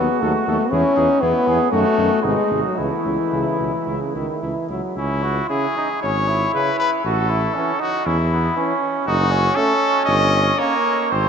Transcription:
0.00 0.23 B3 loud
0.00 0.70 F#4 medium
0.21 0.33 D#2 medium
0.21 0.34 F#3 medium
0.21 0.46 A3 medium
0.21 0.33 A4 medium
0.46 0.58 D#2 medium
0.46 0.59 F#3 medium
0.46 0.73 A3 loud
0.46 0.58 A4 medium
0.71 0.83 E2 medium
0.71 0.84 E3 medium
0.71 1.23 C#4 loud
0.71 0.96 E4 medium
0.71 0.82 G#4 medium
0.96 1.08 E2 medium
0.96 1.08 E3 medium
0.96 1.23 D#4 medium
0.96 1.07 G#4 medium
1.21 1.33 E2 medium
1.21 1.34 E3 medium
1.21 1.71 B3 loud
1.21 1.48 E4 medium
1.21 1.33 G#4 medium
1.47 1.58 E2 medium
1.47 1.59 E3 medium
1.47 1.71 G#4 medium
1.47 1.59 G#4 medium
1.72 1.84 F#2 medium
1.72 1.84 D#3 medium
1.72 2.23 A3 loud
1.72 2.25 F#4 medium
1.72 1.84 F#4 medium
1.97 2.09 F#2 medium
1.97 2.10 D#3 medium
1.97 2.09 F#4 medium
2.23 2.36 G#1 medium
2.23 2.36 C3 medium
2.23 2.63 G#3 loud
2.23 2.79 D#4 medium
2.23 2.36 F#4 medium
2.50 2.62 G#1 medium
2.50 2.63 C3 medium
2.50 2.62 F#4 medium
2.64 2.80 F#3 medium
2.77 2.90 C#2 medium
2.77 2.90 C#3 medium
2.77 4.42 E3 medium
2.77 2.89 E4 medium
2.77 4.69 E4 medium
3.04 3.17 C#2 medium
3.04 3.18 C#3 soft
3.04 3.17 E4 medium
3.32 3.45 C#2 medium
3.32 3.58 C#3 medium
3.32 3.45 E4 medium
3.59 3.72 C#2 medium
3.59 3.72 B2 medium
3.59 3.72 E4 soft
3.86 3.99 C#2 medium
3.86 4.16 C#3 medium
3.86 4.00 E4 medium
4.14 4.27 C#2 medium
4.14 4.43 D#3 medium
4.14 4.27 E4 soft
4.42 4.54 C#2 medium
4.42 4.69 E3 medium
4.42 4.55 E4 soft
4.69 4.81 C#2 medium
4.69 4.96 F#3 medium
4.69 4.82 E4 soft
4.96 5.40 C#2 medium
4.96 5.24 C#4 medium
4.96 5.47 E4 medium
5.23 5.50 F#4 medium
5.48 5.66 C#3 medium
5.48 5.65 C#4 medium
5.48 5.76 E4 medium
5.48 6.02 G#4 loud
5.77 5.89 D#4 medium
6.03 6.45 G#1 medium
6.03 6.30 C#4 medium
6.03 6.53 C#5 loud
6.28 7.04 E4 medium
6.54 6.70 C#3 medium
6.54 6.70 C#4 medium
6.54 6.79 B4 loud
6.80 6.91 B4 loud
7.05 7.47 A1 medium
7.05 7.31 F#4 loud
7.05 7.80 A4 medium
7.30 7.56 E4 medium
7.54 7.72 E3 medium
7.54 7.81 C#4 medium
7.54 7.71 C#4 medium
7.80 8.05 D#4 medium
7.80 8.08 F#4 loud
8.06 8.48 E2 loud
8.06 8.17 C#4 medium
8.06 8.83 E4 medium
8.32 8.56 B3 medium
8.57 8.73 E3 medium
8.57 9.06 C#4 loud
8.57 8.73 C#4 medium
9.07 9.48 F#1 loud
9.07 9.33 D#4 loud
9.07 9.57 F#4 loud
9.31 10.58 C#4 loud
9.56 9.73 A3 medium
9.56 9.72 C#4 medium
9.56 10.05 A4 loud
10.05 10.50 G1 loud
10.05 10.60 D#5 loud
10.58 10.74 A#3 medium
10.58 11.14 A#3 loud
10.58 10.75 C#4 medium
10.58 11.11 C#5 loud
11.11 11.29 G#1 medium
11.11 11.29 C4 loud
11.11 11.29 C5 loud

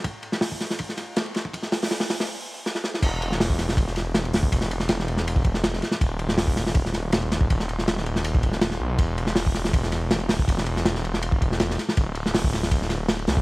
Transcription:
0.04 kick loud
0.04 ride medium
0.23 ride medium
0.32 snare medium
0.41 snare loud
0.41 open hi-hat medium
0.52 kick medium
0.60 snare medium
0.60 ride medium
0.70 snare medium
0.79 kick loud
0.79 ride medium
0.89 snare soft
0.97 snare soft
0.97 ride medium
1.16 snare loud
1.16 ride loud
1.26 ride soft
1.34 snare medium
1.34 ride medium
1.45 kick loud
1.53 kick loud
1.53 ride medium
1.63 snare soft
1.72 snare loud
1.72 open hi-hat medium
1.82 snare loud
1.82 open hi-hat medium
1.91 snare loud
1.91 open hi-hat medium
2.00 snare loud
2.00 open hi-hat medium
2.10 snare loud
2.10 open hi-hat medium
2.20 snare loud
2.20 open hi-hat medium
2.66 snare medium
2.75 snare medium
2.84 snare medium
2.94 snare medium
3.02 4.32 E1 loud
3.02 kick loud
3.02 crash loud
3.02 ride loud
3.22 ride medium
3.32 snare soft
3.40 snare loud
3.40 open hi-hat medium
3.50 kick medium
3.59 snare soft
3.59 ride medium
3.69 snare medium
3.77 kick loud
3.77 ride medium
3.87 snare soft
3.96 snare soft
3.96 ride medium
4.14 snare loud
4.14 ride medium
4.25 ride soft
4.33 4.50 D1 medium
4.33 snare loud
4.33 open hi-hat medium
4.43 kick medium
4.52 5.81 E1 loud
4.52 kick loud
4.52 ride loud
4.61 snare medium
4.71 ride medium
4.80 snare soft
4.89 snare loud
4.89 ride medium
4.99 snare soft
5.08 ride medium
5.17 snare soft
5.27 ride medium
5.36 kick medium
5.44 kick loud
5.44 ride medium
5.54 snare medium
5.64 snare loud
5.64 ride medium
5.74 snare medium
5.82 snare medium
5.82 ride medium
5.91 snare medium
6.01 7.30 D#1 loud
6.01 kick loud
6.01 ride medium
6.19 ride medium
6.29 snare medium
6.38 snare loud
6.38 open hi-hat medium
6.47 kick loud
6.56 snare medium
6.56 ride medium
6.67 snare medium
6.75 kick loud
6.75 ride medium
6.85 snare soft
6.93 snare soft
6.93 ride medium
7.12 snare loud
7.12 ride medium
7.22 ride soft
7.31 7.48 D#1 medium
7.31 snare medium
7.31 ride medium
7.41 kick loud
7.50 8.79 D#1 loud
7.50 kick loud
7.50 ride medium
7.60 snare soft
7.69 ride medium
7.79 snare soft
7.88 snare loud
7.88 ride medium
7.98 snare medium
8.06 ride medium
8.16 snare medium
8.24 ride medium
8.35 kick medium
8.43 kick medium
8.43 ride medium
8.52 snare soft
8.61 snare loud
8.61 ride loud
8.71 snare soft
8.80 8.97 B1 loud
8.99 10.28 E1 loud
8.99 kick loud
8.99 ride medium
9.18 ride medium
9.27 snare soft
9.36 snare loud
9.36 open hi-hat medium
9.46 kick medium
9.54 snare soft
9.54 ride medium
9.65 snare medium
9.73 kick loud
9.73 ride medium
9.83 snare soft
9.92 snare soft
9.92 ride medium
10.11 snare loud
10.11 ride loud
10.20 ride soft
10.29 10.46 D1 medium
10.29 snare loud
10.29 open hi-hat medium
10.39 kick medium
10.48 11.77 E1 loud
10.48 kick loud
10.48 ride medium
10.58 snare medium
10.66 ride medium
10.77 snare soft
10.85 snare loud
10.85 ride medium
10.95 snare medium
11.05 ride medium
11.14 snare soft
11.22 ride loud
11.32 kick loud
11.42 kick loud
11.42 ride medium
11.52 snare soft
11.60 snare loud
11.60 ride medium
11.70 snare medium
11.79 snare soft
11.79 ride medium
11.89 snare medium
11.97 13.26 D1 loud
11.97 kick loud
11.97 ride medium
12.15 ride medium
12.26 snare medium
12.34 snare loud
12.34 open hi-hat medium
12.44 kick loud
12.53 snare soft
12.53 ride medium
12.63 snare soft
12.71 kick loud
12.71 ride medium
12.82 snare soft
12.90 snare soft
12.90 ride medium
13.08 snare loud
13.08 ride medium
13.19 ride soft
13.27 13.42 C2 medium
13.27 snare medium
13.27 open hi-hat medium
13.37 kick loud

